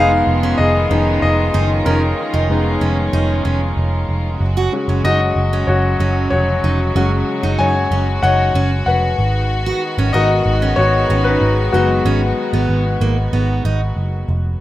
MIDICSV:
0, 0, Header, 1, 5, 480
1, 0, Start_track
1, 0, Tempo, 636943
1, 1404, Time_signature, 4, 2, 24, 8
1, 11008, End_track
2, 0, Start_track
2, 0, Title_t, "Grand piano"
2, 0, Program_c, 0, 0
2, 0, Control_c, 0, 64, 127
2, 0, Note_on_c, 0, 56, 55
2, 0, Note_on_c, 0, 59, 54
2, 0, Note_on_c, 0, 63, 67
2, 0, Note_on_c, 0, 68, 85
2, 0, Note_on_c, 0, 77, 111
2, 411, Note_off_c, 0, 77, 0
2, 417, Note_off_c, 0, 68, 0
2, 434, Note_on_c, 0, 75, 93
2, 448, Note_on_c, 0, 68, 77
2, 652, Note_off_c, 0, 56, 0
2, 654, Note_off_c, 0, 59, 0
2, 657, Note_off_c, 0, 63, 0
2, 679, Note_on_c, 0, 56, 50
2, 683, Note_on_c, 0, 59, 48
2, 686, Note_on_c, 0, 63, 56
2, 896, Note_off_c, 0, 68, 0
2, 897, Note_off_c, 0, 56, 0
2, 899, Note_off_c, 0, 59, 0
2, 901, Note_off_c, 0, 63, 0
2, 909, Note_off_c, 0, 75, 0
2, 921, Note_on_c, 0, 75, 94
2, 933, Note_on_c, 0, 68, 69
2, 1378, Note_off_c, 0, 68, 0
2, 1398, Note_on_c, 0, 70, 82
2, 1409, Note_on_c, 0, 63, 65
2, 1417, Note_off_c, 0, 75, 0
2, 1879, Note_off_c, 0, 63, 0
2, 1880, Note_on_c, 0, 56, 55
2, 1888, Note_on_c, 0, 59, 50
2, 1891, Note_on_c, 0, 63, 62
2, 2331, Note_off_c, 0, 70, 0
2, 2572, Note_off_c, 0, 56, 0
2, 2576, Note_off_c, 0, 59, 0
2, 2577, Note_off_c, 0, 63, 0
2, 3332, Control_c, 0, 64, 0
2, 3444, Control_c, 0, 64, 127
2, 3559, Note_on_c, 0, 56, 47
2, 3564, Note_on_c, 0, 61, 49
2, 3570, Note_on_c, 0, 66, 53
2, 3800, Note_off_c, 0, 66, 0
2, 3802, Note_on_c, 0, 75, 105
2, 3812, Note_on_c, 0, 66, 74
2, 3880, Note_off_c, 0, 56, 0
2, 3883, Note_off_c, 0, 61, 0
2, 4258, Note_off_c, 0, 66, 0
2, 4274, Note_on_c, 0, 73, 85
2, 4287, Note_on_c, 0, 66, 80
2, 4297, Note_off_c, 0, 75, 0
2, 4729, Note_off_c, 0, 73, 0
2, 4735, Note_off_c, 0, 66, 0
2, 4751, Note_on_c, 0, 73, 93
2, 4767, Note_on_c, 0, 66, 70
2, 5207, Note_off_c, 0, 73, 0
2, 5215, Note_off_c, 0, 66, 0
2, 5240, Note_on_c, 0, 56, 57
2, 5247, Note_on_c, 0, 61, 50
2, 5250, Note_on_c, 0, 66, 62
2, 5717, Note_on_c, 0, 80, 111
2, 5729, Note_on_c, 0, 73, 89
2, 6170, Note_off_c, 0, 80, 0
2, 6177, Note_off_c, 0, 73, 0
2, 6199, Note_on_c, 0, 78, 104
2, 6209, Note_on_c, 0, 73, 75
2, 6657, Note_off_c, 0, 73, 0
2, 6667, Note_off_c, 0, 78, 0
2, 6678, Note_on_c, 0, 78, 87
2, 6691, Note_on_c, 0, 71, 66
2, 6892, Note_off_c, 0, 56, 0
2, 6896, Note_off_c, 0, 61, 0
2, 6898, Note_off_c, 0, 66, 0
2, 6935, Control_c, 0, 64, 0
2, 7059, Control_c, 0, 64, 127
2, 7131, Note_off_c, 0, 78, 0
2, 7138, Note_off_c, 0, 71, 0
2, 7632, Note_on_c, 0, 75, 105
2, 7639, Note_on_c, 0, 70, 65
2, 7642, Note_on_c, 0, 59, 49
2, 7648, Note_on_c, 0, 66, 82
2, 8097, Note_off_c, 0, 66, 0
2, 8109, Note_on_c, 0, 73, 101
2, 8126, Note_on_c, 0, 66, 82
2, 8133, Note_off_c, 0, 75, 0
2, 8461, Note_off_c, 0, 66, 0
2, 8473, Note_on_c, 0, 71, 95
2, 8488, Note_off_c, 0, 73, 0
2, 8488, Note_on_c, 0, 63, 68
2, 8822, Note_off_c, 0, 63, 0
2, 8834, Note_off_c, 0, 59, 0
2, 8836, Note_on_c, 0, 66, 91
2, 8841, Note_on_c, 0, 56, 61
2, 8845, Note_on_c, 0, 59, 59
2, 8850, Note_off_c, 0, 71, 0
2, 8851, Note_on_c, 0, 54, 65
2, 9533, Note_off_c, 0, 70, 0
2, 10500, Note_off_c, 0, 54, 0
2, 10735, Note_off_c, 0, 56, 0
2, 10737, Note_off_c, 0, 59, 0
2, 10738, Note_off_c, 0, 66, 0
2, 11008, End_track
3, 0, Start_track
3, 0, Title_t, "Steel-string acoustic guitar"
3, 0, Program_c, 1, 25
3, 0, Note_on_c, 1, 63, 97
3, 80, Note_off_c, 1, 63, 0
3, 326, Note_on_c, 1, 61, 84
3, 439, Note_off_c, 1, 61, 0
3, 683, Note_on_c, 1, 61, 70
3, 912, Note_off_c, 1, 61, 0
3, 1162, Note_on_c, 1, 63, 89
3, 1277, Note_off_c, 1, 63, 0
3, 1401, Note_on_c, 1, 61, 90
3, 1516, Note_off_c, 1, 61, 0
3, 1760, Note_on_c, 1, 63, 80
3, 1990, Note_off_c, 1, 63, 0
3, 2119, Note_on_c, 1, 61, 72
3, 2235, Note_off_c, 1, 61, 0
3, 2361, Note_on_c, 1, 63, 89
3, 2590, Note_off_c, 1, 63, 0
3, 2599, Note_on_c, 1, 61, 73
3, 2715, Note_off_c, 1, 61, 0
3, 3443, Note_on_c, 1, 66, 86
3, 3557, Note_off_c, 1, 66, 0
3, 3684, Note_on_c, 1, 61, 71
3, 3798, Note_off_c, 1, 61, 0
3, 3803, Note_on_c, 1, 63, 88
3, 3918, Note_off_c, 1, 63, 0
3, 4167, Note_on_c, 1, 61, 77
3, 4279, Note_off_c, 1, 61, 0
3, 4524, Note_on_c, 1, 61, 80
3, 4752, Note_off_c, 1, 61, 0
3, 5003, Note_on_c, 1, 63, 73
3, 5118, Note_off_c, 1, 63, 0
3, 5244, Note_on_c, 1, 61, 88
3, 5358, Note_off_c, 1, 61, 0
3, 5602, Note_on_c, 1, 63, 85
3, 5831, Note_off_c, 1, 63, 0
3, 5965, Note_on_c, 1, 61, 74
3, 6079, Note_off_c, 1, 61, 0
3, 6206, Note_on_c, 1, 63, 78
3, 6433, Note_off_c, 1, 63, 0
3, 6446, Note_on_c, 1, 61, 84
3, 6559, Note_off_c, 1, 61, 0
3, 7282, Note_on_c, 1, 66, 90
3, 7397, Note_off_c, 1, 66, 0
3, 7524, Note_on_c, 1, 61, 82
3, 7638, Note_off_c, 1, 61, 0
3, 7641, Note_on_c, 1, 63, 90
3, 7757, Note_off_c, 1, 63, 0
3, 8004, Note_on_c, 1, 61, 78
3, 8119, Note_off_c, 1, 61, 0
3, 8365, Note_on_c, 1, 61, 79
3, 8593, Note_off_c, 1, 61, 0
3, 8848, Note_on_c, 1, 63, 78
3, 8961, Note_off_c, 1, 63, 0
3, 9085, Note_on_c, 1, 61, 92
3, 9199, Note_off_c, 1, 61, 0
3, 9446, Note_on_c, 1, 59, 79
3, 9674, Note_off_c, 1, 59, 0
3, 9806, Note_on_c, 1, 58, 72
3, 9920, Note_off_c, 1, 58, 0
3, 10045, Note_on_c, 1, 59, 73
3, 10274, Note_off_c, 1, 59, 0
3, 10287, Note_on_c, 1, 63, 86
3, 10401, Note_off_c, 1, 63, 0
3, 11008, End_track
4, 0, Start_track
4, 0, Title_t, "String section"
4, 0, Program_c, 2, 48
4, 0, Note_on_c, 2, 51, 88
4, 0, Note_on_c, 2, 56, 68
4, 0, Note_on_c, 2, 59, 77
4, 0, Note_on_c, 2, 65, 84
4, 1144, Note_off_c, 2, 59, 0
4, 1162, Note_on_c, 2, 61, 73
4, 3294, Note_off_c, 2, 51, 0
4, 3294, Note_off_c, 2, 65, 0
4, 3301, Note_off_c, 2, 61, 0
4, 3322, Note_on_c, 2, 49, 77
4, 3322, Note_on_c, 2, 66, 91
4, 3323, Note_on_c, 2, 54, 76
4, 6894, Note_off_c, 2, 49, 0
4, 6894, Note_off_c, 2, 54, 0
4, 6894, Note_off_c, 2, 56, 0
4, 6923, Note_on_c, 2, 56, 69
4, 6924, Note_on_c, 2, 59, 75
4, 6926, Note_on_c, 2, 51, 81
4, 10977, Note_off_c, 2, 56, 0
4, 10977, Note_off_c, 2, 66, 0
4, 10978, Note_off_c, 2, 51, 0
4, 10978, Note_off_c, 2, 59, 0
4, 11008, End_track
5, 0, Start_track
5, 0, Title_t, "Picked electric bass"
5, 0, Program_c, 3, 34
5, 0, Note_on_c, 3, 29, 94
5, 160, Note_off_c, 3, 29, 0
5, 204, Note_on_c, 3, 29, 94
5, 401, Note_off_c, 3, 29, 0
5, 445, Note_on_c, 3, 29, 110
5, 641, Note_off_c, 3, 29, 0
5, 685, Note_on_c, 3, 29, 101
5, 881, Note_off_c, 3, 29, 0
5, 924, Note_on_c, 3, 29, 93
5, 1121, Note_off_c, 3, 29, 0
5, 1165, Note_on_c, 3, 30, 106
5, 1361, Note_off_c, 3, 30, 0
5, 1402, Note_on_c, 3, 29, 101
5, 1599, Note_off_c, 3, 29, 0
5, 1763, Note_on_c, 3, 29, 93
5, 1862, Note_off_c, 3, 29, 0
5, 1882, Note_on_c, 3, 29, 91
5, 2079, Note_off_c, 3, 29, 0
5, 2120, Note_on_c, 3, 29, 99
5, 2318, Note_off_c, 3, 29, 0
5, 2361, Note_on_c, 3, 29, 101
5, 2559, Note_off_c, 3, 29, 0
5, 2601, Note_on_c, 3, 29, 89
5, 2799, Note_off_c, 3, 29, 0
5, 2841, Note_on_c, 3, 29, 92
5, 3039, Note_off_c, 3, 29, 0
5, 3080, Note_on_c, 3, 29, 77
5, 3279, Note_off_c, 3, 29, 0
5, 3320, Note_on_c, 3, 30, 119
5, 3518, Note_off_c, 3, 30, 0
5, 3679, Note_on_c, 3, 30, 87
5, 3779, Note_off_c, 3, 30, 0
5, 3798, Note_on_c, 3, 30, 92
5, 3997, Note_off_c, 3, 30, 0
5, 4039, Note_on_c, 3, 30, 92
5, 4238, Note_off_c, 3, 30, 0
5, 4280, Note_on_c, 3, 30, 107
5, 4478, Note_off_c, 3, 30, 0
5, 4520, Note_on_c, 3, 30, 99
5, 4719, Note_off_c, 3, 30, 0
5, 4763, Note_on_c, 3, 29, 90
5, 4960, Note_off_c, 3, 29, 0
5, 5003, Note_on_c, 3, 29, 92
5, 5200, Note_off_c, 3, 29, 0
5, 5242, Note_on_c, 3, 30, 119
5, 5440, Note_off_c, 3, 30, 0
5, 5603, Note_on_c, 3, 30, 91
5, 5702, Note_off_c, 3, 30, 0
5, 5723, Note_on_c, 3, 30, 86
5, 5920, Note_off_c, 3, 30, 0
5, 5962, Note_on_c, 3, 30, 94
5, 6159, Note_off_c, 3, 30, 0
5, 6202, Note_on_c, 3, 30, 100
5, 6400, Note_off_c, 3, 30, 0
5, 6441, Note_on_c, 3, 30, 96
5, 6639, Note_off_c, 3, 30, 0
5, 6682, Note_on_c, 3, 29, 85
5, 6880, Note_off_c, 3, 29, 0
5, 6923, Note_on_c, 3, 32, 108
5, 7317, Note_off_c, 3, 32, 0
5, 7521, Note_on_c, 3, 32, 98
5, 7621, Note_off_c, 3, 32, 0
5, 7642, Note_on_c, 3, 32, 95
5, 7840, Note_off_c, 3, 32, 0
5, 7881, Note_on_c, 3, 32, 106
5, 8079, Note_off_c, 3, 32, 0
5, 8121, Note_on_c, 3, 32, 92
5, 8319, Note_off_c, 3, 32, 0
5, 8362, Note_on_c, 3, 32, 82
5, 8560, Note_off_c, 3, 32, 0
5, 8601, Note_on_c, 3, 32, 98
5, 8800, Note_off_c, 3, 32, 0
5, 8843, Note_on_c, 3, 30, 90
5, 9041, Note_off_c, 3, 30, 0
5, 9083, Note_on_c, 3, 32, 108
5, 9281, Note_off_c, 3, 32, 0
5, 9443, Note_on_c, 3, 32, 96
5, 9543, Note_off_c, 3, 32, 0
5, 9564, Note_on_c, 3, 32, 87
5, 9762, Note_off_c, 3, 32, 0
5, 9802, Note_on_c, 3, 32, 98
5, 10001, Note_off_c, 3, 32, 0
5, 10045, Note_on_c, 3, 32, 107
5, 10243, Note_off_c, 3, 32, 0
5, 10284, Note_on_c, 3, 32, 96
5, 10482, Note_off_c, 3, 32, 0
5, 10524, Note_on_c, 3, 30, 83
5, 10722, Note_off_c, 3, 30, 0
5, 10765, Note_on_c, 3, 29, 102
5, 10963, Note_off_c, 3, 29, 0
5, 11008, End_track
0, 0, End_of_file